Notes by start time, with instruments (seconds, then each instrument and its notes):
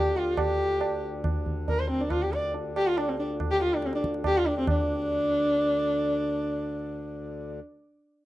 Already playing: harmonium D2 D3, sarangi G4
0.16 sarangi F4, tabla te
0.37 sarangi G4, tabla na, tabla ge
0.81 tabla na
1.24 tabla na, tabla ge
1.46 tabla ge
1.68 sarangi A#4, tabla tin, tabla ge
1.79 sarangi C5
1.90 sarangi C4
2.01 sarangi D4
2.10 sarangi F4, tabla na, tabla ge
2.22 sarangi G4
2.33 sarangi D5, tabla te
2.54 tabla tin
2.76 sarangi G4, tabla na
2.87 sarangi F4
2.98 sarangi D4, tabla na
3.09 sarangi C4
3.19 sarangi D4
3.40 tabla na, tabla ge
3.51 sarangi G4
3.62 sarangi F4, tabla te
3.74 sarangi D4
3.82 sarangi C4, tabla te
3.93 sarangi D4, tabla te
4.04 tabla ke
4.14 tabla te
4.24 sarangi G4, tabla na, tabla ge
4.37 sarangi F4
4.46 sarangi D4, tabla te
4.59 sarangi C4
4.67 harmonium D2 D3, sarangi D4, tabla na, tabla ge